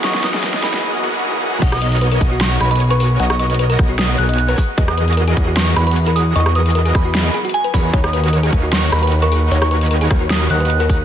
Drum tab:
CC |--------------------------------|x-------------------------------|--------------------------------|--------------------------------|
HH |x---x-xxx-x-x-------------------|x---x-xxx-x-x---x---x-xxx-x-o---|x---x-xxx-x-x---x---x-xxx-x-o---|x---x-xxx-x-x---x---x-xxx-x-o---|
SD |o-o-o-o-o-o-o-o-----------------|--r-------------o---r-----------|--r---------r---o---------------|--r-------------o---r-----------|
BD |--------------------------------|o-----------o-------------------|------------o---------------o---|o-----------o-------------------|

CC |--------------------------------|--------------------------------|--------------------------------|
HH |x---x-xxx-x-x---x---x-xxx-x-o---|x---x-xxx-x-x---x---x-xxx-x-o---|x---x-xxx-x-x---x---x-xxx-x-o---|
SD |--r---------r---o---------------|--r-------------o---r-----------|--r---------r---o---------------|
BD |------------o---------------o---|o-----------o-------------------|------------o---------------o---|